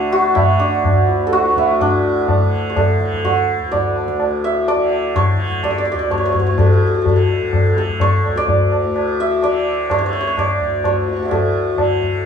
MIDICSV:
0, 0, Header, 1, 4, 480
1, 0, Start_track
1, 0, Tempo, 478469
1, 1812, Time_signature, 5, 2, 24, 8
1, 6604, Tempo, 472441
1, 12369, End_track
2, 0, Start_track
2, 0, Title_t, "Santur"
2, 0, Program_c, 0, 15
2, 0, Note_on_c, 0, 62, 77
2, 0, Note_on_c, 0, 64, 94
2, 0, Note_on_c, 0, 66, 100
2, 120, Note_off_c, 0, 66, 0
2, 124, Note_on_c, 0, 66, 101
2, 346, Note_off_c, 0, 64, 0
2, 350, Note_on_c, 0, 64, 93
2, 590, Note_off_c, 0, 62, 0
2, 594, Note_on_c, 0, 62, 73
2, 1272, Note_on_c, 0, 69, 75
2, 1325, Note_off_c, 0, 66, 0
2, 1329, Note_on_c, 0, 66, 100
2, 1579, Note_off_c, 0, 64, 0
2, 1583, Note_on_c, 0, 64, 83
2, 1813, Note_off_c, 0, 62, 0
2, 1817, Note_on_c, 0, 62, 78
2, 2704, Note_on_c, 0, 73, 58
2, 2764, Note_off_c, 0, 62, 0
2, 2771, Note_off_c, 0, 69, 0
2, 2775, Note_on_c, 0, 69, 77
2, 3252, Note_off_c, 0, 66, 0
2, 3256, Note_on_c, 0, 66, 79
2, 3727, Note_on_c, 0, 74, 88
2, 3787, Note_off_c, 0, 73, 0
2, 4456, Note_on_c, 0, 76, 96
2, 4693, Note_off_c, 0, 74, 0
2, 4697, Note_on_c, 0, 74, 95
2, 5071, Note_off_c, 0, 64, 0
2, 5174, Note_on_c, 0, 73, 93
2, 5234, Note_off_c, 0, 74, 0
2, 5655, Note_on_c, 0, 74, 81
2, 5710, Note_off_c, 0, 69, 0
2, 5715, Note_off_c, 0, 73, 0
2, 5719, Note_off_c, 0, 74, 0
2, 5723, Note_on_c, 0, 74, 66
2, 5797, Note_off_c, 0, 74, 0
2, 5801, Note_on_c, 0, 74, 79
2, 5866, Note_off_c, 0, 74, 0
2, 5870, Note_on_c, 0, 74, 61
2, 5932, Note_off_c, 0, 74, 0
2, 5936, Note_on_c, 0, 74, 81
2, 6005, Note_off_c, 0, 74, 0
2, 6009, Note_on_c, 0, 74, 67
2, 6130, Note_on_c, 0, 73, 79
2, 6191, Note_off_c, 0, 74, 0
2, 6193, Note_off_c, 0, 73, 0
2, 6197, Note_on_c, 0, 73, 59
2, 6270, Note_off_c, 0, 73, 0
2, 6274, Note_on_c, 0, 73, 73
2, 6337, Note_off_c, 0, 73, 0
2, 6341, Note_on_c, 0, 73, 59
2, 6410, Note_off_c, 0, 73, 0
2, 6414, Note_on_c, 0, 73, 65
2, 6481, Note_off_c, 0, 73, 0
2, 6485, Note_on_c, 0, 73, 62
2, 6532, Note_off_c, 0, 66, 0
2, 6610, Note_on_c, 0, 69, 67
2, 6677, Note_off_c, 0, 69, 0
2, 6681, Note_on_c, 0, 69, 49
2, 6749, Note_off_c, 0, 69, 0
2, 6753, Note_on_c, 0, 69, 56
2, 6760, Note_off_c, 0, 76, 0
2, 6821, Note_off_c, 0, 69, 0
2, 6825, Note_on_c, 0, 69, 41
2, 6892, Note_off_c, 0, 69, 0
2, 6896, Note_on_c, 0, 69, 45
2, 6966, Note_off_c, 0, 69, 0
2, 6970, Note_on_c, 0, 69, 47
2, 7040, Note_off_c, 0, 69, 0
2, 7044, Note_on_c, 0, 69, 50
2, 7112, Note_off_c, 0, 69, 0
2, 7116, Note_on_c, 0, 69, 47
2, 7185, Note_off_c, 0, 69, 0
2, 7189, Note_on_c, 0, 69, 51
2, 7814, Note_off_c, 0, 69, 0
2, 7818, Note_on_c, 0, 69, 74
2, 8051, Note_off_c, 0, 73, 0
2, 8056, Note_on_c, 0, 73, 96
2, 8423, Note_on_c, 0, 74, 102
2, 8484, Note_off_c, 0, 73, 0
2, 9264, Note_on_c, 0, 76, 97
2, 9498, Note_off_c, 0, 74, 0
2, 9502, Note_on_c, 0, 74, 90
2, 9985, Note_on_c, 0, 73, 89
2, 10046, Note_off_c, 0, 74, 0
2, 10055, Note_off_c, 0, 73, 0
2, 10059, Note_on_c, 0, 73, 68
2, 10132, Note_off_c, 0, 73, 0
2, 10136, Note_on_c, 0, 73, 72
2, 10202, Note_off_c, 0, 73, 0
2, 10206, Note_on_c, 0, 73, 56
2, 10280, Note_off_c, 0, 73, 0
2, 10284, Note_on_c, 0, 73, 70
2, 10348, Note_off_c, 0, 73, 0
2, 10352, Note_on_c, 0, 73, 58
2, 10469, Note_on_c, 0, 74, 93
2, 10530, Note_off_c, 0, 73, 0
2, 10791, Note_off_c, 0, 69, 0
2, 10939, Note_on_c, 0, 73, 78
2, 11000, Note_off_c, 0, 74, 0
2, 11185, Note_on_c, 0, 86, 31
2, 11222, Note_on_c, 0, 85, 33
2, 11257, Note_on_c, 0, 81, 41
2, 11284, Note_on_c, 0, 78, 40
2, 11316, Note_off_c, 0, 76, 0
2, 11320, Note_on_c, 0, 76, 42
2, 11348, Note_on_c, 0, 74, 44
2, 11374, Note_off_c, 0, 73, 0
2, 11378, Note_on_c, 0, 73, 52
2, 11407, Note_on_c, 0, 69, 68
2, 11409, Note_off_c, 0, 85, 0
2, 11439, Note_off_c, 0, 86, 0
2, 12359, Note_off_c, 0, 69, 0
2, 12369, Note_off_c, 0, 73, 0
2, 12369, Note_off_c, 0, 74, 0
2, 12369, Note_off_c, 0, 76, 0
2, 12369, Note_off_c, 0, 78, 0
2, 12369, Note_off_c, 0, 81, 0
2, 12369, End_track
3, 0, Start_track
3, 0, Title_t, "Tanpura"
3, 0, Program_c, 1, 104
3, 0, Note_on_c, 1, 38, 63
3, 0, Note_on_c, 1, 45, 66
3, 0, Note_on_c, 1, 50, 64
3, 321, Note_off_c, 1, 50, 0
3, 321, Note_on_c, 1, 50, 59
3, 896, Note_off_c, 1, 38, 0
3, 900, Note_on_c, 1, 38, 67
3, 1499, Note_off_c, 1, 45, 0
3, 1503, Note_on_c, 1, 45, 65
3, 1819, Note_off_c, 1, 45, 0
3, 1819, Note_on_c, 1, 45, 57
3, 2410, Note_off_c, 1, 50, 0
3, 2410, Note_on_c, 1, 50, 51
3, 2998, Note_off_c, 1, 50, 0
3, 2998, Note_on_c, 1, 50, 61
3, 3590, Note_off_c, 1, 38, 0
3, 3594, Note_on_c, 1, 38, 55
3, 4177, Note_off_c, 1, 45, 0
3, 4177, Note_on_c, 1, 45, 59
3, 4768, Note_off_c, 1, 50, 0
3, 4768, Note_on_c, 1, 50, 56
3, 5346, Note_off_c, 1, 50, 0
3, 5346, Note_on_c, 1, 50, 68
3, 5939, Note_off_c, 1, 38, 0
3, 5943, Note_on_c, 1, 38, 63
3, 6521, Note_off_c, 1, 45, 0
3, 6525, Note_on_c, 1, 45, 58
3, 7118, Note_off_c, 1, 50, 0
3, 7118, Note_on_c, 1, 50, 61
3, 7697, Note_off_c, 1, 50, 0
3, 7697, Note_on_c, 1, 50, 58
3, 8292, Note_off_c, 1, 38, 0
3, 8296, Note_on_c, 1, 38, 60
3, 8883, Note_off_c, 1, 45, 0
3, 8888, Note_on_c, 1, 45, 58
3, 9498, Note_off_c, 1, 50, 0
3, 9498, Note_on_c, 1, 50, 58
3, 10081, Note_off_c, 1, 50, 0
3, 10081, Note_on_c, 1, 50, 62
3, 10666, Note_off_c, 1, 38, 0
3, 10670, Note_on_c, 1, 38, 54
3, 11252, Note_off_c, 1, 45, 0
3, 11256, Note_on_c, 1, 45, 58
3, 11849, Note_off_c, 1, 50, 0
3, 11849, Note_on_c, 1, 50, 63
3, 12369, Note_off_c, 1, 38, 0
3, 12369, Note_off_c, 1, 45, 0
3, 12369, Note_off_c, 1, 50, 0
3, 12369, End_track
4, 0, Start_track
4, 0, Title_t, "Tabla"
4, 362, Note_on_c, 9, 60, 76
4, 362, Note_on_c, 9, 64, 74
4, 462, Note_off_c, 9, 60, 0
4, 462, Note_off_c, 9, 64, 0
4, 846, Note_on_c, 9, 60, 83
4, 846, Note_on_c, 9, 64, 78
4, 946, Note_off_c, 9, 60, 0
4, 946, Note_off_c, 9, 64, 0
4, 1091, Note_on_c, 9, 62, 63
4, 1191, Note_off_c, 9, 62, 0
4, 1331, Note_on_c, 9, 62, 74
4, 1432, Note_off_c, 9, 62, 0
4, 1453, Note_on_c, 9, 62, 64
4, 1553, Note_off_c, 9, 62, 0
4, 1571, Note_on_c, 9, 37, 54
4, 1671, Note_off_c, 9, 37, 0
4, 1687, Note_on_c, 9, 62, 60
4, 1788, Note_off_c, 9, 62, 0
4, 1812, Note_on_c, 9, 60, 90
4, 1812, Note_on_c, 9, 64, 88
4, 1912, Note_off_c, 9, 60, 0
4, 1912, Note_off_c, 9, 64, 0
4, 2290, Note_on_c, 9, 60, 72
4, 2290, Note_on_c, 9, 64, 69
4, 2391, Note_off_c, 9, 60, 0
4, 2391, Note_off_c, 9, 64, 0
4, 2772, Note_on_c, 9, 60, 77
4, 2772, Note_on_c, 9, 64, 69
4, 2872, Note_off_c, 9, 60, 0
4, 2872, Note_off_c, 9, 64, 0
4, 3014, Note_on_c, 9, 62, 57
4, 3115, Note_off_c, 9, 62, 0
4, 3138, Note_on_c, 9, 64, 50
4, 3239, Note_off_c, 9, 64, 0
4, 3255, Note_on_c, 9, 63, 78
4, 3255, Note_on_c, 9, 64, 67
4, 3356, Note_off_c, 9, 63, 0
4, 3356, Note_off_c, 9, 64, 0
4, 3738, Note_on_c, 9, 63, 73
4, 3738, Note_on_c, 9, 64, 66
4, 3838, Note_off_c, 9, 63, 0
4, 3838, Note_off_c, 9, 64, 0
4, 3976, Note_on_c, 9, 60, 55
4, 4077, Note_off_c, 9, 60, 0
4, 4093, Note_on_c, 9, 37, 62
4, 4193, Note_off_c, 9, 37, 0
4, 4210, Note_on_c, 9, 60, 75
4, 4310, Note_off_c, 9, 60, 0
4, 4695, Note_on_c, 9, 60, 79
4, 4795, Note_off_c, 9, 60, 0
4, 4931, Note_on_c, 9, 60, 61
4, 5031, Note_off_c, 9, 60, 0
4, 5173, Note_on_c, 9, 60, 76
4, 5173, Note_on_c, 9, 64, 70
4, 5273, Note_off_c, 9, 60, 0
4, 5273, Note_off_c, 9, 64, 0
4, 5411, Note_on_c, 9, 62, 55
4, 5511, Note_off_c, 9, 62, 0
4, 5529, Note_on_c, 9, 64, 54
4, 5629, Note_off_c, 9, 64, 0
4, 5649, Note_on_c, 9, 60, 80
4, 5649, Note_on_c, 9, 64, 67
4, 5749, Note_off_c, 9, 60, 0
4, 5749, Note_off_c, 9, 64, 0
4, 5888, Note_on_c, 9, 62, 61
4, 5988, Note_off_c, 9, 62, 0
4, 6127, Note_on_c, 9, 60, 65
4, 6127, Note_on_c, 9, 64, 63
4, 6227, Note_off_c, 9, 60, 0
4, 6227, Note_off_c, 9, 64, 0
4, 6362, Note_on_c, 9, 64, 50
4, 6463, Note_off_c, 9, 64, 0
4, 6600, Note_on_c, 9, 60, 95
4, 6600, Note_on_c, 9, 64, 89
4, 6701, Note_off_c, 9, 60, 0
4, 6701, Note_off_c, 9, 64, 0
4, 7085, Note_on_c, 9, 60, 69
4, 7085, Note_on_c, 9, 64, 69
4, 7187, Note_off_c, 9, 60, 0
4, 7187, Note_off_c, 9, 64, 0
4, 7322, Note_on_c, 9, 62, 55
4, 7424, Note_off_c, 9, 62, 0
4, 7448, Note_on_c, 9, 64, 52
4, 7550, Note_off_c, 9, 64, 0
4, 7566, Note_on_c, 9, 60, 74
4, 7566, Note_on_c, 9, 64, 68
4, 7668, Note_off_c, 9, 60, 0
4, 7668, Note_off_c, 9, 64, 0
4, 7809, Note_on_c, 9, 62, 59
4, 7910, Note_off_c, 9, 62, 0
4, 7926, Note_on_c, 9, 64, 51
4, 8027, Note_off_c, 9, 64, 0
4, 8044, Note_on_c, 9, 63, 75
4, 8044, Note_on_c, 9, 64, 68
4, 8145, Note_off_c, 9, 63, 0
4, 8145, Note_off_c, 9, 64, 0
4, 8287, Note_on_c, 9, 60, 60
4, 8389, Note_off_c, 9, 60, 0
4, 8409, Note_on_c, 9, 37, 61
4, 8511, Note_off_c, 9, 37, 0
4, 8531, Note_on_c, 9, 63, 78
4, 8531, Note_on_c, 9, 64, 65
4, 8633, Note_off_c, 9, 63, 0
4, 8633, Note_off_c, 9, 64, 0
4, 8777, Note_on_c, 9, 60, 51
4, 8878, Note_off_c, 9, 60, 0
4, 9017, Note_on_c, 9, 60, 72
4, 9118, Note_off_c, 9, 60, 0
4, 9491, Note_on_c, 9, 60, 79
4, 9593, Note_off_c, 9, 60, 0
4, 9973, Note_on_c, 9, 60, 82
4, 9973, Note_on_c, 9, 64, 69
4, 10075, Note_off_c, 9, 60, 0
4, 10075, Note_off_c, 9, 64, 0
4, 10455, Note_on_c, 9, 60, 80
4, 10455, Note_on_c, 9, 64, 70
4, 10556, Note_off_c, 9, 60, 0
4, 10556, Note_off_c, 9, 64, 0
4, 10691, Note_on_c, 9, 64, 54
4, 10793, Note_off_c, 9, 64, 0
4, 10931, Note_on_c, 9, 60, 72
4, 10931, Note_on_c, 9, 64, 66
4, 11033, Note_off_c, 9, 60, 0
4, 11033, Note_off_c, 9, 64, 0
4, 11172, Note_on_c, 9, 62, 54
4, 11274, Note_off_c, 9, 62, 0
4, 11411, Note_on_c, 9, 60, 86
4, 11411, Note_on_c, 9, 64, 85
4, 11512, Note_off_c, 9, 60, 0
4, 11512, Note_off_c, 9, 64, 0
4, 11886, Note_on_c, 9, 60, 83
4, 11886, Note_on_c, 9, 64, 68
4, 11988, Note_off_c, 9, 60, 0
4, 11988, Note_off_c, 9, 64, 0
4, 12126, Note_on_c, 9, 64, 51
4, 12227, Note_off_c, 9, 64, 0
4, 12369, End_track
0, 0, End_of_file